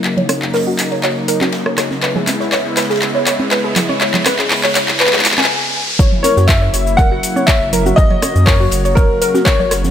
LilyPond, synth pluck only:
\new Staff \with { instrumentName = "Synth pluck" } { \time 4/4 \key fis \mixolydian \tempo 4 = 121 r16 cis''16 cis''16 r16 ais'16 fis'16 r16 cis''16 cis''16 r16 ais'16 fis'16 r16 cis''16 cis''16 r16 | b'16 gis'16 r16 cis''16 cis''16 r16 b'16 gis'16 r16 cis''16 cis''16 r16 b'16 gis'16 r16 cis''16 | cis''16 r16 b'16 gis'16 r16 cis''16 cis''16 r16 b'16 gis'16 r16 gis''16 r4 | cis''16 r16 ais'16 fis'16 r16 cis''16 cis''16 r16 ais'16 fis'16 r16 cis''16 cis''16 r16 ais'16 fis'16 |
r16 cis''16 cis''16 r16 ais'16 fis'16 r16 cis''16 cis''16 r16 ais'16 fis'16 r16 cis''16 cis''16 r16 | }